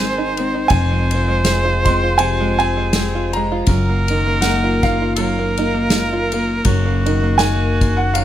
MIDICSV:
0, 0, Header, 1, 7, 480
1, 0, Start_track
1, 0, Tempo, 744417
1, 455, Time_signature, 4, 2, 24, 8
1, 5316, End_track
2, 0, Start_track
2, 0, Title_t, "Upright piano"
2, 0, Program_c, 0, 0
2, 0, Note_on_c, 0, 80, 102
2, 209, Note_off_c, 0, 80, 0
2, 440, Note_on_c, 0, 80, 101
2, 1193, Note_on_c, 0, 84, 99
2, 1214, Note_off_c, 0, 80, 0
2, 1404, Note_on_c, 0, 80, 95
2, 1417, Note_off_c, 0, 84, 0
2, 1658, Note_off_c, 0, 80, 0
2, 1667, Note_on_c, 0, 80, 101
2, 2149, Note_on_c, 0, 82, 95
2, 2167, Note_off_c, 0, 80, 0
2, 2843, Note_on_c, 0, 78, 83
2, 2868, Note_off_c, 0, 82, 0
2, 3114, Note_on_c, 0, 77, 93
2, 3121, Note_off_c, 0, 78, 0
2, 4050, Note_off_c, 0, 77, 0
2, 4757, Note_on_c, 0, 80, 91
2, 5139, Note_on_c, 0, 78, 89
2, 5150, Note_off_c, 0, 80, 0
2, 5248, Note_on_c, 0, 77, 94
2, 5253, Note_off_c, 0, 78, 0
2, 5316, Note_off_c, 0, 77, 0
2, 5316, End_track
3, 0, Start_track
3, 0, Title_t, "Oboe"
3, 0, Program_c, 1, 68
3, 0, Note_on_c, 1, 72, 122
3, 426, Note_off_c, 1, 72, 0
3, 456, Note_on_c, 1, 72, 119
3, 2193, Note_off_c, 1, 72, 0
3, 2366, Note_on_c, 1, 70, 113
3, 3302, Note_off_c, 1, 70, 0
3, 3325, Note_on_c, 1, 70, 97
3, 4287, Note_on_c, 1, 66, 95
3, 4297, Note_off_c, 1, 70, 0
3, 5316, Note_off_c, 1, 66, 0
3, 5316, End_track
4, 0, Start_track
4, 0, Title_t, "Five-string banjo"
4, 0, Program_c, 2, 105
4, 0, Note_on_c, 2, 51, 79
4, 0, Note_on_c, 2, 56, 53
4, 0, Note_on_c, 2, 60, 59
4, 0, Note_on_c, 2, 63, 57
4, 110, Note_off_c, 2, 63, 0
4, 117, Note_on_c, 2, 63, 70
4, 237, Note_off_c, 2, 56, 0
4, 245, Note_on_c, 2, 56, 59
4, 343, Note_off_c, 2, 63, 0
4, 351, Note_on_c, 2, 63, 62
4, 455, Note_off_c, 2, 51, 0
4, 457, Note_on_c, 2, 53, 77
4, 509, Note_off_c, 2, 63, 0
4, 510, Note_off_c, 2, 56, 0
4, 510, Note_off_c, 2, 60, 0
4, 586, Note_on_c, 2, 56, 57
4, 720, Note_on_c, 2, 60, 52
4, 818, Note_off_c, 2, 56, 0
4, 826, Note_on_c, 2, 56, 60
4, 924, Note_off_c, 2, 60, 0
4, 932, Note_on_c, 2, 60, 61
4, 1062, Note_on_c, 2, 65, 67
4, 1193, Note_off_c, 2, 56, 0
4, 1201, Note_on_c, 2, 56, 61
4, 1308, Note_off_c, 2, 65, 0
4, 1311, Note_on_c, 2, 65, 63
4, 1403, Note_off_c, 2, 53, 0
4, 1411, Note_on_c, 2, 53, 84
4, 1542, Note_off_c, 2, 56, 0
4, 1549, Note_on_c, 2, 56, 66
4, 1666, Note_off_c, 2, 60, 0
4, 1673, Note_on_c, 2, 60, 66
4, 1778, Note_off_c, 2, 56, 0
4, 1785, Note_on_c, 2, 56, 60
4, 1890, Note_off_c, 2, 60, 0
4, 1900, Note_on_c, 2, 60, 55
4, 2029, Note_off_c, 2, 65, 0
4, 2031, Note_on_c, 2, 65, 64
4, 2158, Note_off_c, 2, 56, 0
4, 2168, Note_on_c, 2, 56, 62
4, 2265, Note_off_c, 2, 65, 0
4, 2268, Note_on_c, 2, 65, 66
4, 2371, Note_off_c, 2, 53, 0
4, 2381, Note_on_c, 2, 54, 78
4, 2429, Note_off_c, 2, 60, 0
4, 2430, Note_off_c, 2, 56, 0
4, 2511, Note_on_c, 2, 58, 58
4, 2641, Note_off_c, 2, 65, 0
4, 2643, Note_on_c, 2, 63, 55
4, 2742, Note_off_c, 2, 58, 0
4, 2750, Note_on_c, 2, 58, 64
4, 2858, Note_off_c, 2, 63, 0
4, 2858, Note_on_c, 2, 63, 59
4, 2991, Note_on_c, 2, 65, 65
4, 3119, Note_off_c, 2, 58, 0
4, 3126, Note_on_c, 2, 58, 66
4, 3227, Note_off_c, 2, 65, 0
4, 3237, Note_on_c, 2, 65, 58
4, 3331, Note_off_c, 2, 54, 0
4, 3339, Note_on_c, 2, 54, 80
4, 3467, Note_off_c, 2, 58, 0
4, 3475, Note_on_c, 2, 58, 65
4, 3598, Note_off_c, 2, 65, 0
4, 3600, Note_off_c, 2, 63, 0
4, 3600, Note_on_c, 2, 63, 63
4, 3696, Note_off_c, 2, 58, 0
4, 3704, Note_on_c, 2, 58, 52
4, 3810, Note_off_c, 2, 63, 0
4, 3810, Note_on_c, 2, 63, 53
4, 3952, Note_on_c, 2, 65, 62
4, 4074, Note_off_c, 2, 58, 0
4, 4082, Note_on_c, 2, 58, 60
4, 4188, Note_off_c, 2, 65, 0
4, 4280, Note_off_c, 2, 54, 0
4, 4287, Note_on_c, 2, 54, 76
4, 4413, Note_off_c, 2, 58, 0
4, 4420, Note_on_c, 2, 58, 53
4, 4544, Note_off_c, 2, 63, 0
4, 4552, Note_on_c, 2, 63, 60
4, 4653, Note_off_c, 2, 58, 0
4, 4660, Note_on_c, 2, 58, 65
4, 4764, Note_off_c, 2, 63, 0
4, 4772, Note_on_c, 2, 63, 62
4, 5030, Note_off_c, 2, 58, 0
4, 5038, Note_on_c, 2, 58, 64
4, 5248, Note_off_c, 2, 54, 0
4, 5256, Note_on_c, 2, 54, 80
4, 5316, Note_off_c, 2, 54, 0
4, 5316, Note_off_c, 2, 58, 0
4, 5316, Note_off_c, 2, 63, 0
4, 5316, End_track
5, 0, Start_track
5, 0, Title_t, "Steel-string acoustic guitar"
5, 0, Program_c, 3, 25
5, 0, Note_on_c, 3, 44, 78
5, 0, Note_on_c, 3, 51, 63
5, 0, Note_on_c, 3, 60, 64
5, 0, Note_on_c, 3, 63, 59
5, 245, Note_off_c, 3, 60, 0
5, 253, Note_on_c, 3, 60, 56
5, 433, Note_off_c, 3, 44, 0
5, 433, Note_off_c, 3, 51, 0
5, 435, Note_off_c, 3, 60, 0
5, 441, Note_off_c, 3, 63, 0
5, 457, Note_on_c, 3, 41, 83
5, 736, Note_on_c, 3, 53, 68
5, 949, Note_on_c, 3, 56, 68
5, 1216, Note_on_c, 3, 60, 58
5, 1411, Note_on_c, 3, 48, 62
5, 1676, Note_off_c, 3, 56, 0
5, 1684, Note_on_c, 3, 56, 62
5, 1894, Note_off_c, 3, 60, 0
5, 1902, Note_on_c, 3, 60, 61
5, 2160, Note_off_c, 3, 56, 0
5, 2170, Note_on_c, 3, 56, 61
5, 2345, Note_off_c, 3, 48, 0
5, 2347, Note_off_c, 3, 41, 0
5, 2376, Note_on_c, 3, 42, 82
5, 2377, Note_off_c, 3, 60, 0
5, 2378, Note_off_c, 3, 56, 0
5, 2395, Note_off_c, 3, 53, 0
5, 2647, Note_on_c, 3, 51, 67
5, 2859, Note_on_c, 3, 58, 65
5, 3132, Note_on_c, 3, 65, 61
5, 3332, Note_off_c, 3, 42, 0
5, 3335, Note_on_c, 3, 42, 71
5, 3598, Note_off_c, 3, 58, 0
5, 3605, Note_on_c, 3, 58, 59
5, 3810, Note_off_c, 3, 65, 0
5, 3818, Note_on_c, 3, 65, 56
5, 4078, Note_off_c, 3, 58, 0
5, 4086, Note_on_c, 3, 58, 56
5, 4268, Note_off_c, 3, 42, 0
5, 4269, Note_off_c, 3, 65, 0
5, 4271, Note_off_c, 3, 58, 0
5, 4291, Note_on_c, 3, 42, 78
5, 4554, Note_off_c, 3, 51, 0
5, 4561, Note_on_c, 3, 51, 66
5, 4772, Note_on_c, 3, 58, 58
5, 5252, Note_off_c, 3, 42, 0
5, 5260, Note_on_c, 3, 42, 65
5, 5316, Note_off_c, 3, 42, 0
5, 5316, Note_off_c, 3, 51, 0
5, 5316, Note_off_c, 3, 58, 0
5, 5316, End_track
6, 0, Start_track
6, 0, Title_t, "Upright bass"
6, 0, Program_c, 4, 32
6, 0, Note_on_c, 4, 32, 79
6, 431, Note_off_c, 4, 32, 0
6, 455, Note_on_c, 4, 29, 89
6, 2346, Note_off_c, 4, 29, 0
6, 2369, Note_on_c, 4, 30, 88
6, 4265, Note_off_c, 4, 30, 0
6, 4293, Note_on_c, 4, 30, 87
6, 5316, Note_off_c, 4, 30, 0
6, 5316, End_track
7, 0, Start_track
7, 0, Title_t, "Drums"
7, 240, Note_on_c, 9, 51, 53
7, 305, Note_off_c, 9, 51, 0
7, 450, Note_on_c, 9, 51, 67
7, 454, Note_on_c, 9, 36, 83
7, 515, Note_off_c, 9, 51, 0
7, 519, Note_off_c, 9, 36, 0
7, 714, Note_on_c, 9, 51, 59
7, 779, Note_off_c, 9, 51, 0
7, 933, Note_on_c, 9, 38, 91
7, 933, Note_on_c, 9, 51, 78
7, 997, Note_off_c, 9, 38, 0
7, 997, Note_off_c, 9, 51, 0
7, 1196, Note_on_c, 9, 51, 55
7, 1197, Note_on_c, 9, 36, 70
7, 1260, Note_off_c, 9, 51, 0
7, 1262, Note_off_c, 9, 36, 0
7, 1409, Note_on_c, 9, 51, 75
7, 1474, Note_off_c, 9, 51, 0
7, 1674, Note_on_c, 9, 51, 49
7, 1739, Note_off_c, 9, 51, 0
7, 1889, Note_on_c, 9, 38, 94
7, 1889, Note_on_c, 9, 51, 76
7, 1953, Note_off_c, 9, 38, 0
7, 1953, Note_off_c, 9, 51, 0
7, 2149, Note_on_c, 9, 51, 54
7, 2213, Note_off_c, 9, 51, 0
7, 2363, Note_on_c, 9, 51, 70
7, 2369, Note_on_c, 9, 36, 96
7, 2428, Note_off_c, 9, 51, 0
7, 2433, Note_off_c, 9, 36, 0
7, 2631, Note_on_c, 9, 51, 52
7, 2696, Note_off_c, 9, 51, 0
7, 2850, Note_on_c, 9, 38, 93
7, 2850, Note_on_c, 9, 51, 77
7, 2914, Note_off_c, 9, 38, 0
7, 2914, Note_off_c, 9, 51, 0
7, 3114, Note_on_c, 9, 51, 49
7, 3115, Note_on_c, 9, 36, 69
7, 3178, Note_off_c, 9, 51, 0
7, 3180, Note_off_c, 9, 36, 0
7, 3330, Note_on_c, 9, 51, 72
7, 3394, Note_off_c, 9, 51, 0
7, 3595, Note_on_c, 9, 51, 50
7, 3659, Note_off_c, 9, 51, 0
7, 3806, Note_on_c, 9, 38, 92
7, 3806, Note_on_c, 9, 51, 64
7, 3870, Note_off_c, 9, 38, 0
7, 3870, Note_off_c, 9, 51, 0
7, 4074, Note_on_c, 9, 51, 49
7, 4138, Note_off_c, 9, 51, 0
7, 4285, Note_on_c, 9, 51, 69
7, 4290, Note_on_c, 9, 36, 91
7, 4350, Note_off_c, 9, 51, 0
7, 4355, Note_off_c, 9, 36, 0
7, 4554, Note_on_c, 9, 51, 50
7, 4619, Note_off_c, 9, 51, 0
7, 4764, Note_on_c, 9, 38, 98
7, 4764, Note_on_c, 9, 51, 69
7, 4829, Note_off_c, 9, 38, 0
7, 4829, Note_off_c, 9, 51, 0
7, 5037, Note_on_c, 9, 36, 74
7, 5038, Note_on_c, 9, 51, 56
7, 5102, Note_off_c, 9, 36, 0
7, 5102, Note_off_c, 9, 51, 0
7, 5254, Note_on_c, 9, 51, 76
7, 5316, Note_off_c, 9, 51, 0
7, 5316, End_track
0, 0, End_of_file